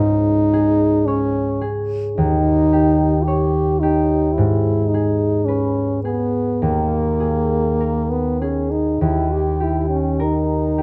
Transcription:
0, 0, Header, 1, 3, 480
1, 0, Start_track
1, 0, Tempo, 1100917
1, 951, Time_signature, 4, 2, 24, 8
1, 2385, Tempo, 1147228
1, 2865, Tempo, 1188119
1, 4565, End_track
2, 0, Start_track
2, 0, Title_t, "Harp"
2, 0, Program_c, 0, 46
2, 0, Note_on_c, 0, 37, 34
2, 0, Note_on_c, 0, 44, 33
2, 0, Note_on_c, 0, 68, 35
2, 0, Note_on_c, 0, 73, 34
2, 227, Note_off_c, 0, 68, 0
2, 233, Note_on_c, 0, 68, 34
2, 464, Note_off_c, 0, 73, 0
2, 469, Note_on_c, 0, 73, 35
2, 686, Note_off_c, 0, 37, 0
2, 698, Note_off_c, 0, 68, 0
2, 703, Note_on_c, 0, 68, 32
2, 949, Note_on_c, 0, 39, 38
2, 965, Note_off_c, 0, 68, 0
2, 966, Note_off_c, 0, 44, 0
2, 1189, Note_on_c, 0, 67, 30
2, 1423, Note_off_c, 0, 73, 0
2, 1428, Note_on_c, 0, 73, 35
2, 1663, Note_off_c, 0, 67, 0
2, 1669, Note_on_c, 0, 67, 33
2, 1909, Note_on_c, 0, 44, 40
2, 1917, Note_off_c, 0, 39, 0
2, 1921, Note_off_c, 0, 73, 0
2, 1922, Note_off_c, 0, 67, 0
2, 2154, Note_on_c, 0, 68, 29
2, 2390, Note_on_c, 0, 71, 29
2, 2622, Note_off_c, 0, 68, 0
2, 2627, Note_on_c, 0, 68, 26
2, 2866, Note_on_c, 0, 39, 34
2, 2887, Note_off_c, 0, 71, 0
2, 2890, Note_off_c, 0, 44, 0
2, 3095, Note_off_c, 0, 68, 0
2, 3100, Note_on_c, 0, 68, 26
2, 3345, Note_on_c, 0, 70, 26
2, 3587, Note_off_c, 0, 68, 0
2, 3592, Note_on_c, 0, 68, 26
2, 3827, Note_off_c, 0, 39, 0
2, 3832, Note_on_c, 0, 39, 33
2, 3850, Note_off_c, 0, 68, 0
2, 4071, Note_on_c, 0, 67, 24
2, 4306, Note_off_c, 0, 70, 0
2, 4311, Note_on_c, 0, 70, 28
2, 4542, Note_off_c, 0, 67, 0
2, 4547, Note_on_c, 0, 67, 24
2, 4565, Note_off_c, 0, 39, 0
2, 4565, Note_off_c, 0, 67, 0
2, 4565, Note_off_c, 0, 70, 0
2, 4565, End_track
3, 0, Start_track
3, 0, Title_t, "French horn"
3, 0, Program_c, 1, 60
3, 0, Note_on_c, 1, 63, 57
3, 463, Note_on_c, 1, 61, 52
3, 469, Note_off_c, 1, 63, 0
3, 707, Note_off_c, 1, 61, 0
3, 944, Note_on_c, 1, 63, 54
3, 1411, Note_on_c, 1, 67, 55
3, 1418, Note_off_c, 1, 63, 0
3, 1656, Note_on_c, 1, 63, 50
3, 1662, Note_off_c, 1, 67, 0
3, 1885, Note_on_c, 1, 64, 47
3, 1891, Note_off_c, 1, 63, 0
3, 2129, Note_on_c, 1, 63, 48
3, 2136, Note_off_c, 1, 64, 0
3, 2377, Note_on_c, 1, 61, 45
3, 2384, Note_off_c, 1, 63, 0
3, 2619, Note_off_c, 1, 61, 0
3, 2621, Note_on_c, 1, 59, 43
3, 2867, Note_on_c, 1, 58, 47
3, 2873, Note_off_c, 1, 59, 0
3, 3466, Note_on_c, 1, 59, 37
3, 3472, Note_off_c, 1, 58, 0
3, 3590, Note_on_c, 1, 61, 42
3, 3596, Note_off_c, 1, 59, 0
3, 3710, Note_on_c, 1, 63, 40
3, 3716, Note_off_c, 1, 61, 0
3, 3832, Note_on_c, 1, 64, 41
3, 3838, Note_off_c, 1, 63, 0
3, 3955, Note_on_c, 1, 67, 45
3, 3961, Note_off_c, 1, 64, 0
3, 4079, Note_on_c, 1, 64, 40
3, 4085, Note_off_c, 1, 67, 0
3, 4185, Note_off_c, 1, 64, 0
3, 4187, Note_on_c, 1, 61, 36
3, 4324, Note_on_c, 1, 63, 44
3, 4330, Note_off_c, 1, 61, 0
3, 4565, Note_off_c, 1, 63, 0
3, 4565, End_track
0, 0, End_of_file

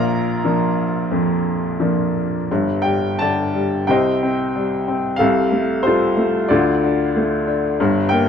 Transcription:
0, 0, Header, 1, 2, 480
1, 0, Start_track
1, 0, Tempo, 665927
1, 798, Tempo, 691244
1, 1763, Time_signature, 4, 2, 24, 8
1, 2718, Tempo, 652174
1, 5968, End_track
2, 0, Start_track
2, 0, Title_t, "Upright piano"
2, 0, Program_c, 0, 0
2, 0, Control_c, 0, 64, 127
2, 0, Note_on_c, 0, 34, 62
2, 0, Note_on_c, 0, 46, 64
2, 0, Note_on_c, 0, 70, 64
2, 0, Note_on_c, 0, 74, 62
2, 0, Note_on_c, 0, 77, 62
2, 0, Note_on_c, 0, 82, 86
2, 321, Note_on_c, 0, 53, 48
2, 321, Note_on_c, 0, 58, 42
2, 325, Note_on_c, 0, 62, 52
2, 704, Note_off_c, 0, 53, 0
2, 704, Note_off_c, 0, 58, 0
2, 706, Note_off_c, 0, 62, 0
2, 803, Note_on_c, 0, 41, 58
2, 1249, Note_off_c, 0, 82, 0
2, 1255, Note_off_c, 0, 70, 0
2, 1255, Note_off_c, 0, 74, 0
2, 1255, Note_off_c, 0, 77, 0
2, 1277, Note_on_c, 0, 53, 43
2, 1279, Note_on_c, 0, 58, 38
2, 1284, Note_on_c, 0, 62, 46
2, 1666, Note_off_c, 0, 53, 0
2, 1667, Note_off_c, 0, 58, 0
2, 1670, Note_off_c, 0, 62, 0
2, 1738, Note_off_c, 0, 34, 0
2, 1738, Note_off_c, 0, 41, 0
2, 1740, Note_off_c, 0, 46, 0
2, 1772, Control_c, 0, 64, 0
2, 1774, Note_on_c, 0, 43, 58
2, 1775, Note_on_c, 0, 31, 52
2, 1874, Control_c, 0, 64, 127
2, 1986, Note_on_c, 0, 79, 74
2, 2005, Note_on_c, 0, 55, 45
2, 2242, Note_on_c, 0, 81, 76
2, 2243, Note_off_c, 0, 79, 0
2, 2257, Note_on_c, 0, 50, 46
2, 2263, Note_on_c, 0, 74, 57
2, 2481, Note_off_c, 0, 55, 0
2, 2491, Note_on_c, 0, 55, 49
2, 2690, Note_off_c, 0, 81, 0
2, 2696, Note_off_c, 0, 43, 0
2, 2697, Note_off_c, 0, 31, 0
2, 2700, Note_off_c, 0, 74, 0
2, 2711, Note_off_c, 0, 50, 0
2, 2715, Note_off_c, 0, 55, 0
2, 2718, Note_on_c, 0, 79, 77
2, 2727, Note_on_c, 0, 36, 55
2, 2727, Note_on_c, 0, 48, 63
2, 2728, Control_c, 0, 64, 0
2, 2742, Note_on_c, 0, 75, 59
2, 2743, Note_on_c, 0, 72, 57
2, 2864, Control_c, 0, 64, 127
2, 2979, Note_on_c, 0, 60, 46
2, 3222, Note_on_c, 0, 55, 46
2, 3447, Note_off_c, 0, 60, 0
2, 3458, Note_on_c, 0, 60, 50
2, 3664, Note_off_c, 0, 36, 0
2, 3665, Note_off_c, 0, 48, 0
2, 3668, Note_on_c, 0, 77, 80
2, 3672, Note_off_c, 0, 72, 0
2, 3672, Note_off_c, 0, 75, 0
2, 3682, Note_off_c, 0, 55, 0
2, 3686, Note_off_c, 0, 60, 0
2, 3688, Note_on_c, 0, 69, 59
2, 3696, Note_on_c, 0, 48, 65
2, 3699, Note_on_c, 0, 36, 64
2, 3700, Control_c, 0, 64, 0
2, 3718, Note_off_c, 0, 79, 0
2, 3824, Control_c, 0, 64, 127
2, 3927, Note_on_c, 0, 57, 50
2, 4158, Note_on_c, 0, 72, 75
2, 4169, Note_on_c, 0, 55, 51
2, 4172, Note_off_c, 0, 77, 0
2, 4173, Note_off_c, 0, 69, 0
2, 4184, Note_on_c, 0, 69, 51
2, 4186, Note_on_c, 0, 65, 55
2, 4399, Note_off_c, 0, 57, 0
2, 4410, Note_on_c, 0, 57, 55
2, 4625, Note_off_c, 0, 48, 0
2, 4626, Note_off_c, 0, 36, 0
2, 4629, Note_off_c, 0, 69, 0
2, 4630, Note_off_c, 0, 65, 0
2, 4637, Note_off_c, 0, 55, 0
2, 4641, Note_on_c, 0, 74, 71
2, 4644, Note_off_c, 0, 57, 0
2, 4653, Note_on_c, 0, 38, 63
2, 4654, Note_on_c, 0, 50, 64
2, 4656, Note_on_c, 0, 69, 49
2, 4657, Note_on_c, 0, 65, 51
2, 4660, Note_off_c, 0, 72, 0
2, 4660, Control_c, 0, 64, 0
2, 4791, Control_c, 0, 64, 127
2, 4898, Note_on_c, 0, 62, 53
2, 5139, Note_on_c, 0, 57, 54
2, 5334, Note_off_c, 0, 74, 0
2, 5360, Note_off_c, 0, 62, 0
2, 5371, Note_on_c, 0, 62, 54
2, 5576, Note_off_c, 0, 38, 0
2, 5578, Note_off_c, 0, 50, 0
2, 5578, Note_off_c, 0, 65, 0
2, 5578, Note_off_c, 0, 69, 0
2, 5595, Note_off_c, 0, 57, 0
2, 5599, Note_off_c, 0, 62, 0
2, 5609, Note_on_c, 0, 43, 70
2, 5610, Note_on_c, 0, 31, 69
2, 5614, Control_c, 0, 64, 0
2, 5730, Control_c, 0, 64, 127
2, 5821, Note_on_c, 0, 79, 86
2, 5840, Note_on_c, 0, 58, 55
2, 5968, Note_off_c, 0, 31, 0
2, 5968, Note_off_c, 0, 43, 0
2, 5968, Note_off_c, 0, 58, 0
2, 5968, Note_off_c, 0, 79, 0
2, 5968, End_track
0, 0, End_of_file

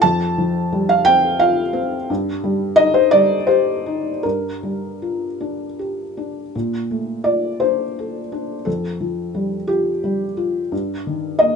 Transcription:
0, 0, Header, 1, 2, 480
1, 0, Start_track
1, 0, Key_signature, -2, "major"
1, 0, Tempo, 694444
1, 8, Time_signature, 3, 2, 24, 8
1, 2409, Tempo, 762389
1, 4329, Tempo, 719424
1, 4809, Tempo, 704225
1, 5769, Tempo, 684932
1, 7797, End_track
2, 0, Start_track
2, 0, Title_t, "Felt piano"
2, 0, Program_c, 0, 0
2, 0, Control_c, 0, 64, 127
2, 11, Note_on_c, 0, 81, 118
2, 20, Control_c, 0, 64, 0
2, 23, Note_on_c, 0, 41, 77
2, 123, Control_c, 0, 64, 127
2, 263, Note_on_c, 0, 53, 65
2, 501, Note_on_c, 0, 55, 64
2, 611, Note_off_c, 0, 81, 0
2, 616, Note_on_c, 0, 77, 105
2, 641, Note_off_c, 0, 53, 0
2, 724, Note_on_c, 0, 79, 115
2, 733, Note_off_c, 0, 77, 0
2, 742, Note_on_c, 0, 60, 67
2, 879, Note_off_c, 0, 55, 0
2, 964, Note_on_c, 0, 77, 106
2, 966, Note_off_c, 0, 79, 0
2, 978, Note_on_c, 0, 65, 69
2, 1118, Note_off_c, 0, 60, 0
2, 1197, Note_on_c, 0, 60, 73
2, 1354, Note_off_c, 0, 65, 0
2, 1424, Note_off_c, 0, 41, 0
2, 1439, Note_off_c, 0, 60, 0
2, 1442, Note_off_c, 0, 77, 0
2, 1451, Note_on_c, 0, 43, 79
2, 1458, Control_c, 0, 64, 0
2, 1572, Control_c, 0, 64, 127
2, 1684, Note_on_c, 0, 55, 61
2, 1907, Note_on_c, 0, 75, 119
2, 1921, Note_on_c, 0, 63, 65
2, 2033, Note_off_c, 0, 75, 0
2, 2033, Note_on_c, 0, 72, 99
2, 2064, Note_off_c, 0, 55, 0
2, 2151, Note_on_c, 0, 74, 109
2, 2157, Note_off_c, 0, 72, 0
2, 2164, Note_on_c, 0, 55, 62
2, 2310, Note_off_c, 0, 63, 0
2, 2397, Note_on_c, 0, 72, 96
2, 2405, Note_off_c, 0, 74, 0
2, 2408, Note_on_c, 0, 67, 59
2, 2550, Note_off_c, 0, 55, 0
2, 2647, Note_on_c, 0, 63, 55
2, 2785, Note_off_c, 0, 67, 0
2, 2860, Note_off_c, 0, 43, 0
2, 2876, Note_off_c, 0, 72, 0
2, 2878, Note_on_c, 0, 70, 74
2, 2884, Note_off_c, 0, 63, 0
2, 2890, Note_on_c, 0, 43, 63
2, 2895, Control_c, 0, 64, 0
2, 3029, Control_c, 0, 64, 127
2, 3130, Note_on_c, 0, 55, 45
2, 3376, Note_on_c, 0, 65, 44
2, 3519, Note_off_c, 0, 55, 0
2, 3618, Note_on_c, 0, 62, 48
2, 3762, Note_off_c, 0, 65, 0
2, 3853, Note_off_c, 0, 70, 0
2, 3861, Note_on_c, 0, 67, 51
2, 4000, Note_off_c, 0, 62, 0
2, 4101, Note_on_c, 0, 62, 49
2, 4241, Note_off_c, 0, 67, 0
2, 4309, Note_off_c, 0, 43, 0
2, 4334, Note_off_c, 0, 62, 0
2, 4342, Note_on_c, 0, 46, 63
2, 4344, Control_c, 0, 64, 0
2, 4450, Control_c, 0, 64, 127
2, 4578, Note_on_c, 0, 57, 49
2, 4800, Note_on_c, 0, 74, 90
2, 4810, Note_on_c, 0, 65, 51
2, 4958, Note_off_c, 0, 57, 0
2, 5043, Note_on_c, 0, 72, 82
2, 5047, Note_off_c, 0, 74, 0
2, 5057, Note_on_c, 0, 62, 51
2, 5197, Note_off_c, 0, 65, 0
2, 5309, Note_on_c, 0, 69, 50
2, 5442, Note_off_c, 0, 62, 0
2, 5537, Note_on_c, 0, 62, 52
2, 5683, Note_off_c, 0, 69, 0
2, 5748, Note_off_c, 0, 46, 0
2, 5761, Note_on_c, 0, 69, 82
2, 5766, Note_off_c, 0, 72, 0
2, 5771, Note_off_c, 0, 62, 0
2, 5772, Note_on_c, 0, 41, 59
2, 5783, Control_c, 0, 64, 0
2, 5884, Control_c, 0, 64, 127
2, 6009, Note_on_c, 0, 53, 49
2, 6248, Note_on_c, 0, 55, 50
2, 6397, Note_off_c, 0, 53, 0
2, 6478, Note_on_c, 0, 67, 79
2, 6488, Note_on_c, 0, 65, 55
2, 6490, Note_off_c, 0, 69, 0
2, 6638, Note_off_c, 0, 55, 0
2, 6732, Note_on_c, 0, 55, 57
2, 6876, Note_off_c, 0, 65, 0
2, 6966, Note_on_c, 0, 65, 57
2, 7116, Note_off_c, 0, 55, 0
2, 7186, Note_off_c, 0, 41, 0
2, 7205, Note_off_c, 0, 67, 0
2, 7208, Note_off_c, 0, 65, 0
2, 7210, Note_on_c, 0, 43, 67
2, 7223, Control_c, 0, 64, 0
2, 7352, Control_c, 0, 64, 127
2, 7454, Note_on_c, 0, 51, 50
2, 7678, Note_on_c, 0, 75, 93
2, 7691, Note_on_c, 0, 58, 54
2, 7797, Note_off_c, 0, 43, 0
2, 7797, Note_off_c, 0, 51, 0
2, 7797, Note_off_c, 0, 58, 0
2, 7797, Note_off_c, 0, 75, 0
2, 7797, End_track
0, 0, End_of_file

